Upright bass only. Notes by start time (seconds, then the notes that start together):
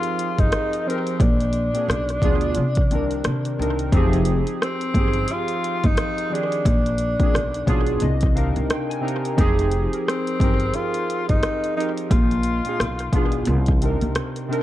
0.39 G1
1.20 A#1
1.88 B1
2.22 D2
2.57 C3
2.91 C2
3.25 C3
3.59 C2
3.93 F1
4.95 G1
5.85 G1
6.65 A#1
7.34 B1
7.67 B1
8.02 C2
8.56 C2
9.38 F1
10.40 G1
11.30 G1
12.11 A#1
12.80 B1
13.13 B1
13.47 C2
14.02 C2